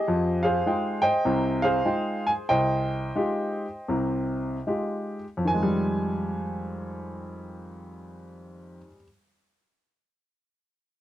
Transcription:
0.00 1.01 G4 medium
0.00 0.43 G#4 medium
0.00 0.41 D#5 medium
0.08 0.58 F2 medium
0.08 0.58 F3 medium
0.43 1.60 G#4 medium
0.43 1.02 C5 medium
0.43 0.99 F5 medium
0.66 1.07 G#3 medium
0.66 1.07 D#4 medium
0.66 1.07 F4 medium
0.66 1.00 G5 medium
1.02 1.63 C5 medium
1.02 2.22 D#5 medium
1.02 1.65 G5 medium
1.25 1.77 C2 medium
1.25 1.77 C3 medium
1.62 2.88 G#4 medium
1.62 2.48 C5 medium
1.62 2.28 F5 medium
1.85 2.29 G#3 soft
1.85 2.29 D#4 soft
1.85 2.30 F4 soft
1.85 2.29 G5 medium
2.27 2.32 G#5 medium
2.49 3.07 C2 medium
2.49 5.16 C5 medium
2.49 5.16 D#5 medium
2.49 5.16 G5 medium
3.15 3.65 G#3 soft
3.15 3.65 D#4 medium
3.15 3.65 F4 medium
3.15 3.65 G4 medium
3.88 4.56 C2 medium
3.88 4.56 C3 medium
4.67 5.24 G#3 soft
4.67 5.24 D#4 soft
4.67 5.24 F4 soft
4.67 5.24 G4 medium
5.37 8.78 F2 medium
5.45 8.86 D#3 medium
5.45 8.85 G#5 medium
5.54 8.95 G#3 medium
5.62 9.03 G3 medium

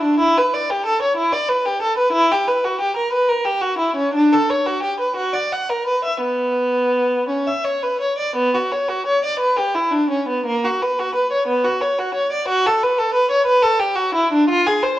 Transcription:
0.01 0.19 D4 medium
0.19 0.36 E4 medium
0.38 0.54 B4 medium
0.54 0.70 D5 medium
0.70 0.86 G4 medium
0.86 1.02 A4 medium
1.02 1.18 C#5 medium
1.17 1.33 E4 medium
1.33 1.50 D5 medium
1.48 1.66 B4 medium
1.65 1.82 G4 medium
1.82 1.98 A4 medium
1.98 2.14 B4 medium
2.12 2.29 E4 medium
2.32 2.47 G4 medium
2.48 2.64 B4 medium
2.64 2.80 F#4 medium
2.81 2.96 G4 medium
2.96 3.12 A#4 medium
3.13 3.28 B4 medium
3.29 3.45 A#4 medium
3.44 3.61 G4 medium
3.61 3.78 F#4 medium
3.78 3.95 E4 medium
3.96 4.13 C#4 medium
4.13 4.31 D4 medium
4.32 4.49 A4 medium
4.50 4.66 C#5 medium
4.66 4.82 F#4 medium
4.83 4.99 G4 medium
5.00 5.16 B4 medium
5.16 5.33 F#4 medium
5.33 5.51 D5 medium
5.52 5.69 F#5 medium
5.69 5.87 A#4 soft
5.87 6.04 B4 soft
6.04 6.22 E5 soft
6.21 7.27 B3 medium
7.29 7.47 C#4 soft
7.47 7.65 E5 medium
7.64 7.83 C#5 soft
7.83 8.01 B4 soft
8.01 8.19 C#5 soft
8.18 8.36 D5 soft
8.36 8.53 B3 medium
8.54 8.71 F#4 medium
8.72 8.88 C#5 soft
8.89 9.05 F#4 medium
9.06 9.22 C#5 medium
9.24 9.40 D5 medium
9.39 9.55 B4 medium
9.57 9.73 G4 medium
9.75 9.91 E4 soft
9.91 10.08 D4 medium
10.10 10.27 C#4 soft
10.28 10.45 B3 soft
10.46 10.62 A#3 medium
10.65 10.80 F#4 medium
10.82 10.97 B4 medium
10.99 11.14 F#4 medium
11.15 11.31 B4 medium
11.32 11.47 C#5 medium
11.47 11.63 B3 medium
11.64 11.81 F#4 medium
11.81 11.98 C#5 medium
11.98 12.15 F#4 medium
12.14 12.30 C#5 medium
12.32 12.48 D5 medium
12.48 12.64 F#4 medium
12.66 12.81 A4 medium
12.83 12.98 B4 medium
12.98 13.14 A4 medium
13.14 13.29 B4 medium
13.31 13.46 C#5 medium
13.46 13.62 B4 medium
13.62 13.79 A4 medium
13.79 13.96 G4 medium
13.95 14.13 F#4 medium
14.14 14.31 E4 medium
14.32 14.49 D4 medium
14.49 14.65 F4 medium
14.67 14.83 G#4 medium
14.83 14.99 C5 medium

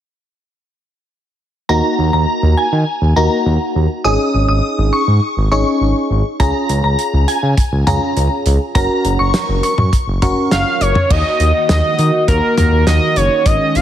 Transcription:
1.69 1.81 D#2 loud
1.69 2.67 A#3 medium
1.69 2.67 D#4 medium
1.69 2.67 F#4 medium
1.69 1.79 A#5 loud
1.99 2.11 D#2 loud
2.13 2.26 D#2 loud
2.13 2.33 A#5 medium
2.43 2.55 D#2 medium
2.57 2.67 G#5 medium
2.72 2.84 D#3 loud
3.02 3.14 D#2 medium
3.16 3.28 D#2 medium
3.16 3.90 A#3 medium
3.16 3.90 D#4 medium
3.16 3.90 F#4 medium
3.16 3.26 A#5 medium
3.46 3.58 D#2 loud
3.75 3.87 D#2 medium
4.04 4.17 G#1 loud
4.04 5.02 C#4 medium
4.04 5.02 D#4 medium
4.04 5.02 G#4 medium
4.04 4.14 D#6 loud
4.34 4.46 G#1 medium
4.49 4.61 G#1 medium
4.49 4.68 D#6 medium
4.78 4.90 G#1 loud
4.93 5.03 C#6 medium
5.08 5.20 G#2 medium
5.37 5.49 G#1 medium
5.52 5.64 G#1 loud
5.52 6.25 C#4 medium
5.52 6.25 D#4 medium
5.52 6.25 G#4 medium
5.52 5.61 C#6 medium
5.81 5.93 G#1 medium
6.10 6.23 G#1 loud
6.40 6.52 C#2 loud
6.40 7.38 C#4 medium
6.40 7.38 F4 medium
6.40 7.38 G#4 medium
6.40 6.50 A#5 loud
6.40 kick loud
6.40 closed hi-hat medium
6.69 6.81 C#2 loud
6.69 closed hi-hat medium
6.84 6.96 C#2 medium
6.84 7.04 A#5 medium
6.99 closed hi-hat medium
7.13 7.25 C#2 medium
7.28 7.38 G#5 medium
7.28 closed hi-hat medium
7.43 7.55 C#3 loud
7.57 kick medium
7.57 closed hi-hat medium
7.72 7.84 C#2 medium
7.87 7.99 C#2 medium
7.87 8.60 C#4 medium
7.87 8.60 F4 medium
7.87 8.60 G#4 medium
7.87 7.97 A#5 medium
7.87 closed hi-hat medium
7.87 mid tom medium
8.16 8.29 C#2 medium
8.16 closed hi-hat medium
8.46 8.58 C#2 loud
8.46 closed hi-hat medium
8.75 8.87 F#1 loud
8.75 9.73 C#4 medium
8.75 9.73 F#4 medium
8.75 9.73 A#4 medium
8.75 8.85 A#5 loud
8.75 kick loud
8.75 closed hi-hat medium
9.05 9.17 F#1 loud
9.05 closed hi-hat medium
9.19 9.31 F#1 loud
9.19 9.39 C#6 medium
9.34 snare loud
9.34 closed hi-hat medium
9.49 9.61 F#1 medium
9.63 9.73 C#6 medium
9.63 closed hi-hat medium
9.78 9.90 F#2 medium
9.78 mid tom medium
9.93 kick medium
9.93 closed hi-hat medium
10.07 10.20 F#1 loud
10.22 10.34 F#1 medium
10.22 10.96 C#4 medium
10.22 10.96 F#4 medium
10.22 10.96 A#4 medium
10.22 10.32 C#6 medium
10.22 kick medium
10.22 closed hi-hat medium
10.22 mid tom medium
10.51 10.64 F#1 medium
10.51 10.82 F5 loud
10.51 snare medium
10.51 closed hi-hat medium
10.81 10.93 F#1 loud
10.81 11.12 C#5 loud
10.81 closed hi-hat medium
10.95 mid tom medium
11.10 11.23 D#2 loud
11.10 13.82 D#3 medium
11.10 13.43 A#3 medium
11.10 13.43 F#4 medium
11.10 11.69 D#5 loud
11.10 kick loud
11.10 crash medium
11.40 11.52 D#2 loud
11.40 closed hi-hat medium
11.69 11.81 D#2 loud
11.69 12.24 D#5 loud
11.69 snare loud
11.69 closed hi-hat medium
11.99 12.11 D#3 medium
11.99 closed hi-hat medium
12.28 12.40 D#2 loud
12.28 12.55 A#4 medium
12.28 kick medium
12.28 closed hi-hat medium
12.57 12.70 D#2 medium
12.57 12.85 A#4 loud
12.57 closed hi-hat medium
12.57 mid tom medium
12.72 12.84 D#2 medium
12.87 12.99 D#2 loud
12.87 13.18 D#5 loud
12.87 snare medium
12.87 closed hi-hat medium
13.16 13.28 F#1 loud
13.16 13.47 C#5 loud
13.16 closed hi-hat medium
13.46 13.58 G#1 loud
13.46 13.82 G#3 medium
13.46 13.82 C#4 medium
13.46 13.77 D#5 loud
13.46 kick loud
13.46 closed hi-hat medium
13.75 13.82 G#1 loud
13.75 13.82 F5 loud
13.75 closed hi-hat medium

